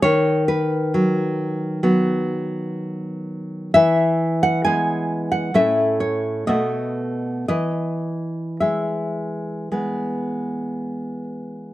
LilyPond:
\new Staff \with { instrumentName = "Nylon-string guitar" } { \time 4/4 \key e \major \tempo 4 = 63 << { cis''8 b'2.~ b'8 | e''8. fis''16 gis''8. fis''16 e''8 cis''8 dis''4 | dis''4 e''2~ e''8 r8 | } \\ { dis4 fis4 <fis b>2 | e4 <gis b>4 <a, a cis'>4 <b, a b>4 | e4 gis4 <gis b>2 | } >> }